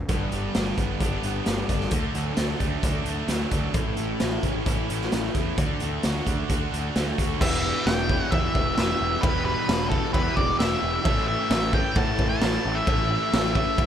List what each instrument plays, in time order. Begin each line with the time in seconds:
0.09 picked electric bass G1, distorted electric guitar G2, overdriven electric guitar G2 D3 G3 B3 D4 G4, kick, closed hi-hat
0.32 picked electric bass G1, distorted electric guitar G3, closed hi-hat
0.55 picked electric bass G1, distorted electric guitar D4, snare, closed hi-hat
0.78 picked electric bass G1, distorted electric guitar B3, kick, closed hi-hat
1.00 picked electric bass G1, overdriven electric guitar G2 D3 G3 B3 D4 G4, distorted electric guitar D4, kick, closed hi-hat
1.23 picked electric bass G1, distorted electric guitar B3, closed hi-hat
1.46 picked electric bass G1, distorted electric guitar G3, snare, closed hi-hat
1.69 picked electric bass G1, distorted electric guitar D4, kick, closed hi-hat
1.80 snare
1.91 picked electric bass D2, overdriven electric guitar D3 A3 D4 F#4, distorted electric guitar D3, kick, closed hi-hat
2.14 picked electric bass D2, distorted electric guitar F#3, closed hi-hat
2.37 picked electric bass D2, distorted electric guitar D4, snare, closed hi-hat
2.59 picked electric bass D2, distorted electric guitar A3, kick, closed hi-hat
2.82 picked electric bass D2, overdriven electric guitar D3 A3 D4 F#4, distorted electric guitar D4, kick, closed hi-hat
3.05 picked electric bass D2, distorted electric guitar A3, closed hi-hat
3.27 picked electric bass D2, distorted electric guitar F#3, snare, closed hi-hat
3.51 picked electric bass D2, distorted electric guitar D4, kick, closed hi-hat
3.73 picked electric bass A1, distorted electric guitar A2, overdriven electric guitar A2 E3 A3 C#4 E4, kick, closed hi-hat
3.97 picked electric bass A1, distorted electric guitar A3, closed hi-hat
4.20 picked electric bass A1, distorted electric guitar E4, snare, closed hi-hat
4.43 picked electric bass A1, distorted electric guitar C#4, kick, closed hi-hat
4.66 picked electric bass A1, overdriven electric guitar A2 E3 A3 C#4 E4, distorted electric guitar E4, kick, closed hi-hat
4.89 picked electric bass A1, distorted electric guitar C#4, closed hi-hat
5.01 snare
5.12 picked electric bass A1, distorted electric guitar A3, snare, closed hi-hat
5.35 picked electric bass E2, distorted electric guitar E4, kick, closed hi-hat
5.57 picked electric bass D2, overdriven electric guitar D3 A3 D4 F#4, distorted electric guitar D3, kick, closed hi-hat
5.80 picked electric bass D2, distorted electric guitar A3, closed hi-hat
6.03 picked electric bass D2, distorted electric guitar F#4, snare, closed hi-hat
6.27 picked electric bass D2, distorted electric guitar D4, kick, closed hi-hat
6.49 picked electric bass D2, overdriven electric guitar D3 A3 D4 F#4, distorted electric guitar F#4, kick, closed hi-hat
6.71 picked electric bass D2, distorted electric guitar D4, closed hi-hat
6.95 picked electric bass D2, distorted electric guitar A3, snare, closed hi-hat
7.18 picked electric bass D2, distorted electric guitar F#4, kick, closed hi-hat
7.40 picked electric bass E1, distorted electric guitar E2 B2 E3, overdriven electric guitar E2 B2 E3 G3 B3 E4, honky-tonk piano G4 B4 E5, lead electric guitar E5, kick, crash
7.65 honky-tonk piano G4 B4
7.86 picked electric bass E1, honky-tonk piano G4 B4 E5, lead electric guitar G5, snare, crash
8.09 distorted electric guitar E2 B2 E3, honky-tonk piano G4 B4 C#5, kick
8.21 lead electric guitar F#5
8.31 overdriven electric guitar E2 B2 E3 G3 B3 E4, picked electric bass E2, honky-tonk piano G4 B4 E5, lead electric guitar E5, kick, crash
8.54 picked electric bass E1, honky-tonk piano G4 B4 E5, kick
8.75 picked electric bass E1, distorted electric guitar E2 B2, honky-tonk piano G4 B4 E5, lead electric guitar E5, snare, crash
8.80 distorted electric guitar E3
9.00 picked electric bass E1, honky-tonk piano G4 B4 E5
9.22 picked electric bass E1, overdriven electric guitar E2 B2 E3 G3 B3 E4, distorted electric guitar E2 B2 E3, honky-tonk piano G4 B4 E5, lead electric guitar B4, kick, crash
9.45 honky-tonk piano G4 B4 E5, lead electric guitar B4
9.68 picked electric bass E1, honky-tonk piano G4 B4 C#5, snare, crash
9.89 distorted electric guitar B2 E3, honky-tonk piano G4 B4 E5, lead electric guitar A4, kick
9.94 distorted electric guitar E2
10.13 overdriven electric guitar E2 B2 E3 G3 B3 E4, picked electric bass E2, honky-tonk piano G4 B4 E5, lead electric guitar B4, kick, crash
10.36 picked electric bass E1, honky-tonk piano G4 B4 D5, lead electric guitar D5, kick
10.58 picked electric bass E1, distorted electric guitar E2 B2, honky-tonk piano G4 B4 E5, lead electric guitar E5, snare, crash
10.62 distorted electric guitar E3
10.82 picked electric bass E1, honky-tonk piano G4 B4 E5
11.04 picked electric bass A1, overdriven electric guitar A2 E3 A3 C#4 E4, distorted electric guitar A2 E3, honky-tonk piano A4 C#5 E5, lead electric guitar E5, kick, crash
11.08 distorted electric guitar A3
11.27 honky-tonk piano A4 C#5 G5, lead electric guitar E5
11.50 picked electric bass A1, honky-tonk piano A4 C#5 E5, snare, crash
11.73 distorted electric guitar A2 E3 A3, honky-tonk piano A4 C#5 E5, lead electric guitar G5, kick
11.95 overdriven electric guitar A2 E3 A3 C#4 E4, picked electric bass A2, honky-tonk piano A4 C#5 F#5, lead electric guitar A5, kick, crash
12.19 picked electric bass A1, honky-tonk piano A4 C#5 E5, kick
12.29 lead electric guitar A5
12.41 picked electric bass A1, distorted electric guitar A2 E3 A3, honky-tonk piano A4 C#5 E5, snare, crash
12.65 picked electric bass A1, honky-tonk piano A4 C#5 E5
12.75 lead electric guitar E5
12.86 picked electric bass A1, distorted electric guitar A2 E3 A3, overdriven electric guitar A2 E3 A3 C#4 E4, honky-tonk piano A4 C#5 E5, kick, crash
13.11 honky-tonk piano A4 C#5
13.33 picked electric bass A1, honky-tonk piano A4 C#5 E5, snare, crash
13.54 distorted electric guitar A2 E3 A3, honky-tonk piano A4 C#5 E5, lead electric guitar E5, kick
13.78 overdriven electric guitar A2 E3 A3 C#4 E4, picked electric bass A2, honky-tonk piano A4 C#5 E5, kick, crash